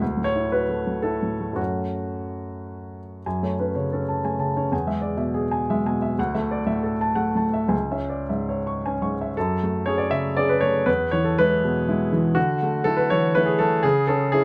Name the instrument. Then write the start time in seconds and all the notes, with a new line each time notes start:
grand piano
0.01 D2
0.17 A2
0.24 C#5
0.36 E4
0.52 F#4 B4
0.69 A3
0.87 A2
1.02 E4 A4
1.23 A2
1.40 A3
1.53 F#2 A3 C#4 F#4
3.26 F#2 G#5
3.43 A3 C#5
3.60 C#4 B4
3.75 C#3 C#5
3.92 C#4 A4
4.09 A5
4.25 A3 G#5
4.39 C#3 A5
4.56 C#4 C#5
4.72 E2 G#5
4.87 G#3 E5
5.02 D5
5.17 B2 E5
5.34 G#4
5.51 G#5
5.70 G#3 E5
5.86 B2 G#5
6.02 E5
6.19 D2 F#5
6.35 A3 E5
6.51 D5
6.67 A2 E5
6.83 A4
7.01 A5
7.15 A3 F#5
7.35 A2 A5
7.54 E5
7.68 C#2 G#5
7.91 C#4 E5
8.09 D5
8.29 G#2 E5
8.49 C#5
8.67 C#6
8.86 C#4 G#5
9.02 G#2 C#6
9.21 E5
9.37 F#2 A4
9.63 A3
9.86 C#4 G#4 C#5
9.98 D5
10.11 C#3 E5
10.37 C#4 G#4 D5
10.49 B4
10.61 A3 C#5
10.86 E2 B4
11.11 E3 C#5
11.24 A4
11.38 G#3 E4 B4
11.64 B2
11.88 G#3 E4
12.13 E3
12.35 D3 F#4
12.63 A3
12.84 A3 E4 A4
12.97 B4
13.10 E3 C#5
13.35 A3 E4 B4
13.46 G#4
13.59 A3 A4
13.83 C#3 G#4
14.07 C#4 A4
14.32 C#4 E4 G#4